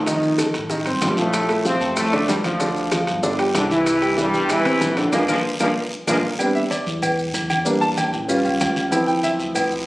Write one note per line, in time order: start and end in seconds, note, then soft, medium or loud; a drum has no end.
0.00 0.49 F1 loud
0.00 0.51 D#3 medium
0.00 0.51 D#4 medium
0.06 0.33 D#3 medium
0.06 0.33 D#4 medium
0.06 0.33 D#5 medium
0.06 high bongo medium
0.06 high conga soft
0.06 high timbale medium
0.06 long guiro medium
0.06 maracas medium
0.23 high conga soft
0.23 maracas soft
0.38 0.64 A3 medium
0.38 0.65 A4 medium
0.38 0.65 A5 medium
0.38 high bongo medium
0.38 high conga loud
0.38 high timbale medium
0.38 short guiro medium
0.38 claves medium
0.38 maracas medium
0.54 0.84 A1 medium
0.54 high bongo soft
0.54 high timbale medium
0.54 short guiro medium
0.54 maracas soft
0.69 0.83 D#3 medium
0.69 0.83 D#4 medium
0.69 0.83 D#5 medium
0.69 high bongo medium
0.69 high conga soft
0.69 long guiro medium
0.69 maracas medium
0.86 1.01 G1 medium
0.86 1.12 C4 medium
0.86 1.12 C5 medium
0.86 1.12 C6 medium
0.86 high bongo soft
0.86 high conga soft
0.86 high timbale medium
0.86 maracas soft
1.01 1.75 A#1 loud
1.01 1.18 G2 medium
1.01 1.17 G3 medium
1.01 high bongo medium
1.01 low bongo medium
1.01 high conga medium
1.01 high timbale medium
1.01 low timbale medium
1.01 short guiro medium
1.01 claves medium
1.01 maracas medium
1.17 1.62 A2 medium
1.17 1.44 F3 medium
1.17 1.62 A3 medium
1.17 1.44 F4 medium
1.17 1.44 F5 medium
1.17 high bongo soft
1.17 high conga medium
1.17 short guiro medium
1.17 maracas soft
1.33 high bongo medium
1.33 high conga soft
1.33 high timbale loud
1.33 long guiro medium
1.33 claves medium
1.33 maracas medium
1.49 1.62 A3 medium
1.49 1.62 A4 medium
1.49 1.63 A5 medium
1.49 high conga soft
1.49 high timbale medium
1.49 maracas soft
1.65 1.95 C3 medium
1.65 1.78 F3 medium
1.65 1.95 C4 loud
1.65 1.78 F4 medium
1.65 1.79 F5 medium
1.65 high bongo medium
1.65 high conga medium
1.65 short guiro medium
1.65 maracas medium
1.80 2.25 F2 medium
1.80 2.07 A3 medium
1.80 2.07 A4 medium
1.80 2.07 A5 medium
1.80 high conga soft
1.80 short guiro medium
1.80 maracas soft
1.96 2.27 A2 medium
1.96 2.26 A3 loud
1.96 high bongo medium
1.96 high conga soft
1.96 low conga medium
1.96 high timbale medium
1.96 long guiro medium
1.96 claves medium
1.96 maracas medium
2.13 2.39 D3 medium
2.13 2.39 D4 medium
2.13 2.39 D5 medium
2.13 high conga soft
2.13 low conga medium
2.13 high timbale medium
2.13 maracas soft
2.28 3.02 D2 loud
2.28 2.36 G2 medium
2.28 2.36 G3 medium
2.28 high bongo medium
2.28 low bongo loud
2.28 high conga medium
2.28 low timbale medium
2.28 short guiro medium
2.28 maracas medium
2.44 2.57 F3 medium
2.44 3.04 F3 medium
2.44 2.58 F4 medium
2.44 3.04 F4 medium
2.44 2.58 F5 medium
2.44 high conga medium
2.44 high timbale medium
2.44 short guiro medium
2.44 claves medium
2.44 maracas soft
2.60 2.86 D3 medium
2.60 2.86 D4 medium
2.60 2.86 D5 medium
2.60 high bongo medium
2.60 high conga soft
2.60 high timbale medium
2.60 long guiro medium
2.60 maracas medium
2.76 high conga soft
2.76 maracas soft
2.91 3.17 F3 medium
2.91 3.17 F4 medium
2.91 3.18 F5 medium
2.91 high bongo medium
2.91 high conga loud
2.91 high timbale medium
2.91 short guiro medium
2.91 claves medium
2.91 maracas medium
3.07 3.51 G1 medium
3.07 high bongo soft
3.07 high timbale medium
3.07 short guiro medium
3.07 maracas soft
3.23 3.36 D3 medium
3.23 3.36 D4 medium
3.23 3.36 D5 medium
3.23 high bongo medium
3.23 high conga soft
3.23 long guiro medium
3.23 maracas medium
3.39 3.65 G3 medium
3.39 3.65 G4 medium
3.39 3.65 G5 medium
3.39 high bongo soft
3.39 high conga soft
3.39 high timbale medium
3.39 maracas soft
3.55 4.28 C2 loud
3.55 3.63 D3 medium
3.55 3.63 D4 medium
3.55 high bongo medium
3.55 low bongo medium
3.55 high conga medium
3.55 high timbale loud
3.55 short guiro medium
3.55 claves medium
3.55 maracas medium
3.70 3.96 E3 medium
3.70 4.15 E3 loud
3.70 3.96 E4 medium
3.70 4.15 E4 medium
3.70 3.96 E5 medium
3.70 high bongo soft
3.70 high conga medium
3.70 short guiro medium
3.70 maracas soft
3.86 high bongo medium
3.86 high conga soft
3.86 high timbale medium
3.86 long guiro medium
3.86 claves medium
3.86 maracas medium
4.01 4.15 G3 medium
4.01 4.15 G4 medium
4.01 4.15 G5 medium
4.01 high conga soft
4.01 high timbale medium
4.01 maracas soft
4.17 4.51 G2 medium
4.17 4.30 E3 medium
4.17 4.50 G3 loud
4.17 4.31 E4 medium
4.17 4.31 E5 medium
4.17 high bongo medium
4.17 high conga medium
4.17 short guiro medium
4.17 maracas medium
4.33 4.78 E2 medium
4.33 4.60 G3 medium
4.33 4.60 G4 medium
4.33 4.60 G5 medium
4.33 high conga soft
4.33 short guiro medium
4.33 maracas soft
4.49 4.97 E3 loud
4.49 4.98 E4 medium
4.49 high bongo medium
4.49 high conga soft
4.49 low conga medium
4.49 high timbale medium
4.49 long guiro medium
4.49 claves medium
4.49 maracas medium
4.65 4.91 C3 medium
4.65 4.91 C4 medium
4.65 4.91 C5 loud
4.65 high conga soft
4.65 low conga medium
4.65 high timbale medium
4.65 maracas soft
4.81 5.11 A#1 loud
4.81 high bongo medium
4.81 low bongo medium
4.81 high conga medium
4.81 short guiro medium
4.81 maracas medium
4.96 5.11 D3 medium
4.96 5.10 D3 medium
4.96 5.10 D4 medium
4.96 5.12 D4 medium
4.96 5.10 D5 medium
4.96 high conga medium
4.96 high timbale medium
4.96 short guiro medium
4.96 claves medium
4.96 maracas soft
5.12 5.24 A#1 loud
5.12 5.20 F3 medium
5.12 5.20 G#3 medium
5.12 5.20 A#3 medium
5.12 5.23 A#3 medium
5.12 5.23 D4 loud
5.12 5.23 F4 medium
5.12 low bongo loud
5.12 high conga loud
5.12 high timbale medium
5.12 long guiro medium
5.12 claves medium
5.12 maracas loud
5.28 5.40 A#1 medium
5.28 5.36 F3 loud
5.28 5.36 G#3 medium
5.28 5.39 A#3 medium
5.28 5.36 A#3 loud
5.28 5.39 D4 medium
5.28 5.39 F4 medium
5.28 low bongo medium
5.28 high conga loud
5.28 high timbale medium
5.28 long guiro loud
5.28 claves loud
5.28 maracas medium
5.60 5.72 A#1 medium
5.60 5.68 F3 medium
5.60 5.68 G#3 medium
5.60 5.68 A#3 medium
5.60 5.70 A#3 loud
5.60 5.71 D4 loud
5.60 5.70 F4 loud
5.60 low bongo loud
5.60 high conga medium
5.60 high timbale loud
5.60 long guiro medium
5.60 claves medium
5.60 maracas medium
6.07 6.19 A#1 loud
6.07 6.16 F3 medium
6.07 6.15 G#3 loud
6.07 6.18 A#3 medium
6.07 6.16 A#3 medium
6.07 6.18 D4 medium
6.07 6.18 F4 loud
6.07 low bongo loud
6.07 high conga loud
6.07 high timbale loud
6.07 long guiro loud
6.07 claves loud
6.07 maracas loud
6.39 6.60 G3 medium
6.39 6.60 B3 soft
6.39 6.60 C4 soft
6.39 6.61 D4 medium
6.39 cowbell loud
6.39 high conga soft
6.39 low agogo loud
6.39 long guiro medium
6.39 claves medium
6.39 maracas medium
6.55 6.70 E5 medium
6.55 high conga soft
6.55 maracas soft
6.71 6.86 D5 medium
6.71 cowbell medium
6.71 high conga medium
6.71 low agogo medium
6.71 short guiro medium
6.71 maracas medium
6.86 7.31 E2 medium
6.86 cowbell medium
6.86 short guiro medium
6.86 maracas soft
7.02 cowbell loud
7.02 high conga soft
7.02 low conga medium
7.02 low agogo loud
7.02 long guiro medium
7.02 claves medium
7.02 maracas medium
7.18 high conga soft
7.18 maracas soft
7.34 8.07 E2 loud
7.34 cowbell medium
7.34 high conga medium
7.34 low agogo medium
7.34 short guiro medium
7.34 maracas medium
7.50 high conga medium
7.50 low agogo loud
7.50 short guiro medium
7.50 claves medium
7.50 maracas soft
7.65 8.10 G3 medium
7.65 8.10 A#3 medium
7.65 8.11 D4 medium
7.65 cowbell loud
7.65 high conga soft
7.65 long guiro medium
7.65 maracas medium
7.81 7.97 A5 loud
7.81 high conga soft
7.81 maracas soft
7.97 8.13 G5 medium
7.97 cowbell medium
7.97 high conga loud
7.97 low agogo loud
7.97 short guiro medium
7.97 claves medium
7.97 maracas medium
8.13 8.43 A1 medium
8.13 short guiro medium
8.13 maracas soft
8.28 8.88 G3 medium
8.28 8.89 C#4 medium
8.28 8.89 F4 medium
8.28 cowbell loud
8.28 high conga soft
8.28 low agogo medium
8.28 long guiro medium
8.28 maracas medium
8.44 8.59 C#2 medium
8.44 high conga soft
8.44 low agogo medium
8.44 maracas soft
8.60 9.34 D2 loud
8.60 cowbell medium
8.60 high conga medium
8.60 low timbale medium
8.60 low agogo loud
8.60 short guiro medium
8.60 claves medium
8.60 maracas medium
8.76 high conga medium
8.76 low agogo medium
8.76 short guiro medium
8.76 maracas soft
8.91 9.86 F3 medium
8.91 9.86 C4 soft
8.91 9.86 E4 medium
8.91 cowbell loud
8.91 low agogo loud
8.91 long guiro medium
8.91 claves medium
8.91 maracas medium
9.07 9.23 G5 medium
9.07 high conga soft
9.07 maracas soft
9.23 9.33 E5 medium
9.23 cowbell medium
9.23 high conga medium
9.23 low agogo medium
9.23 short guiro medium
9.23 maracas medium
9.39 9.83 D2 medium
9.39 cowbell medium
9.39 high conga soft
9.39 short guiro medium
9.39 maracas soft
9.55 cowbell loud
9.55 high conga soft
9.55 low conga medium
9.55 low agogo loud
9.55 long guiro medium
9.55 claves medium
9.55 maracas medium
9.71 high conga soft
9.71 maracas soft